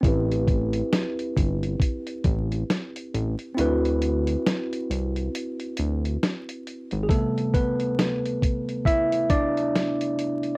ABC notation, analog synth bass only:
X:1
M:4/4
L:1/16
Q:"Swing 16ths" 1/4=68
K:Ador
V:1 name="Analog synth bass" clef=bass
A,,,4 z2 G,,,2 z2 A,,,2 z2 A,,, z | D,,4 z2 C,,2 z2 D,,2 z3 ^G,,, | z16 |]